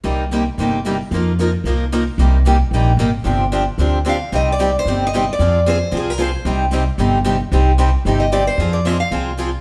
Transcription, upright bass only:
X:1
M:4/4
L:1/8
Q:"Swing" 1/4=225
K:Cm
V:1 name="Upright bass" clef=bass
C,,4 G,,,4 | F,,4 C,,4 | C,,4 B,,,2 A,,,2 | G,,,4 D,,4 |
C,,4 G,,,4 | F,,4 C,,4 | C,,4 G,,,4 | C,,4 G,,,4 |
F,,4 C,,4 |]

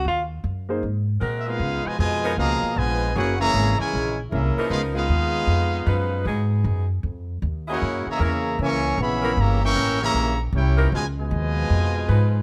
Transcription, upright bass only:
X:1
M:4/4
L:1/8
Q:"Swing" 1/4=154
K:Abmix
V:1 name="Upright bass" clef=bass
E,,2 G,,2 A,,2 B,,2 | [K:Gblyd] D,, z F,,2 D,, z B,,,2 | G,,,2 A,,, z B,,,2 C,, z | D,,2 E,,2 F,,2 G,,2 |
A,,2 G,,2 F,,2 E,,2 | G,, z _F,,2 D,,2 B,,,2 | =G,,,2 =A,,,2 B,,,2 C,,2 | D,,2 E,,2 F,,2 A,,2 |]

